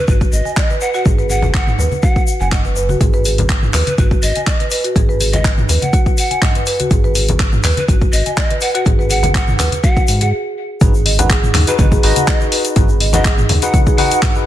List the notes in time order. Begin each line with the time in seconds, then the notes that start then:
0.08 G#1 F#4 B4, kick, mid tom, shaker
0.21 kick, muted conga, shaker
0.32 G#1 D#5, shaker
0.45 G#5, muted conga, shaker
0.57 D#5, kick, clap, shaker
0.70 B4, muted conga, shaker
0.81 B4 F#5, shaker
0.94 F#4 F#5, shaker
1.06 G#1 G#4, kick, mid tom, muted conga, shaker
1.19 B4, shaker
1.30 G#4 F#5, muted conga, shaker
1.42 high conga, low conga, shaker
1.54 F#5, kick, clap, shaker
1.67 mid tom, shaker
1.79 D#2 B4, low conga, shaker
1.91 muted conga, high conga, shaker
2.03 F#4 F#5, kick, shaker
2.16 kick, muted conga, shaker
2.27 shaker
2.40 F#1 F#5 G#5, muted conga, shaker
2.52 D#5 F#5, kick, clap, mid tom, shaker
2.65 B4, muted conga, shaker
2.76 B4, shaker
2.89 F#4, high conga, shaker
3.01 G#1 G#4, kick, closed hi-hat, mid tom, muted conga, shaker
3.13 B4, shaker
3.25 G#4, open hi-hat, muted conga, shaker
3.38 closed hi-hat, high conga, low conga, shaker
3.49 kick, clap, closed hi-hat, shaker
3.63 mid tom, shaker
3.74 D#2 B4, clap, open hi-hat, low conga, shaker
3.87 B4, closed hi-hat, muted conga, high conga, shaker
3.98 G#1 F#4 B4, kick, closed hi-hat, mid tom, shaker
4.11 kick, muted conga, shaker
4.23 G#1 D#5, open hi-hat, shaker
4.36 G#5, closed hi-hat, muted conga, shaker
4.47 D#5, kick, clap, closed hi-hat, shaker
4.60 B4, closed hi-hat, muted conga, shaker
4.71 B4, open hi-hat, shaker
4.84 F#4, closed hi-hat, shaker
4.96 G#1 G#4, kick, closed hi-hat, mid tom, muted conga, shaker
5.09 B4, shaker
5.20 G#4, open hi-hat, muted conga, shaker
5.33 D#5, closed hi-hat, high conga, low conga, shaker
5.45 kick, clap, closed hi-hat, muted conga, shaker
5.58 mid tom, shaker
5.69 D#2 B4, open hi-hat, low conga, shaker
5.82 F#5, closed hi-hat, muted conga, high conga, shaker
5.93 F#4, kick, closed hi-hat, shaker
6.06 kick, muted conga, shaker
6.18 F#5, open hi-hat, shaker
6.31 G#5, closed hi-hat, muted conga, shaker
6.42 D#5, kick, clap, mid tom, open hi-hat, shaker
6.55 B4, closed hi-hat, muted conga, shaker
6.66 B4, open hi-hat, shaker
6.80 F#4, closed hi-hat, high conga, shaker
6.91 G#1 G#4, kick, closed hi-hat, mid tom, muted conga, shaker
7.04 B4, shaker
7.15 G#4, open hi-hat, muted conga, shaker
7.28 closed hi-hat, high conga, low conga, shaker
7.39 kick, clap, closed hi-hat, shaker
7.52 mid tom, shaker
7.64 D#2 B4, clap, open hi-hat, low conga, shaker
7.77 B4, closed hi-hat, muted conga, high conga, shaker
7.88 G#1 F#4 B4, kick, closed hi-hat, mid tom, shaker
8.01 kick, muted conga, shaker
8.13 G#1 D#5, open hi-hat, shaker
8.26 G#5, closed hi-hat, muted conga, shaker
8.37 D#5, kick, clap, closed hi-hat, shaker
8.50 B4, closed hi-hat, muted conga, shaker
8.61 B4 F#5, open hi-hat, shaker
8.74 F#4 F#5, closed hi-hat, shaker
8.86 G#1 G#4, kick, closed hi-hat, mid tom, muted conga, shaker
8.99 B4, shaker
9.10 G#4 F#5, open hi-hat, muted conga, shaker
9.23 closed hi-hat, high conga, low conga, shaker
9.35 F#5, kick, clap, closed hi-hat, shaker
9.48 mid tom, high conga, shaker
9.59 D#2 B4, clap, open hi-hat, low conga, shaker
9.72 closed hi-hat, muted conga, high conga, shaker
9.83 F#4 F#5, kick, closed hi-hat, shaker
9.96 kick, muted conga, shaker
10.08 G#2, open hi-hat, shaker
10.21 G#4 F#5, closed hi-hat, muted conga, shaker
10.81 G#1 D#4 F#4 G#4 B4, kick, closed hi-hat, mid tom, muted conga, shaker
10.94 shaker
11.06 D#5, open hi-hat, muted conga
11.19 D#4 F#4 G#4 B4 F#5, closed hi-hat, low conga, shaker
11.29 G#4, kick, clap, closed hi-hat, muted conga, shaker
11.43 mid tom, shaker
11.54 D#2 D#4, clap, open hi-hat, high conga, low conga
11.67 D#4 F#4 G#4 B4, closed hi-hat, muted conga, shaker
11.79 G#1 B4 D#5, kick, closed hi-hat, mid tom, high conga, shaker
11.92 G#4, kick, muted conga, shaker
12.03 G#1 D#4 F#4 G#4 B4 D#5, open hi-hat
12.16 F#5, closed hi-hat, muted conga, high conga, shaker
12.27 D#5, kick, clap, closed hi-hat, shaker
12.41 D#4 F#4 G#4 B4, muted conga, shaker
12.52 B4, open hi-hat
12.65 closed hi-hat, shaker
12.76 G#1 D#4 F#4 G#4 B4, kick, closed hi-hat, mid tom, muted conga, shaker
12.89 shaker
13.00 D#5, open hi-hat, muted conga
13.13 D#4 F#4 G#4 B4 D#5 F#5, closed hi-hat, low conga, shaker
13.25 G#4, kick, clap, closed hi-hat, shaker
13.38 mid tom, shaker
13.49 D#2 D#4, open hi-hat, high conga, low conga
13.62 D#4 F#4 G#4 B4 F#5, closed hi-hat, muted conga, shaker
13.74 D#5, kick, closed hi-hat, high conga, shaker
13.87 G#4, kick, muted conga, shaker
13.98 D#4 F#4 G#4 B4 F#5, open hi-hat, high conga
14.10 F#5, closed hi-hat, muted conga, shaker
14.22 kick, clap, mid tom, open hi-hat, shaker
14.35 D#4 F#4 G#4 B4, muted conga, shaker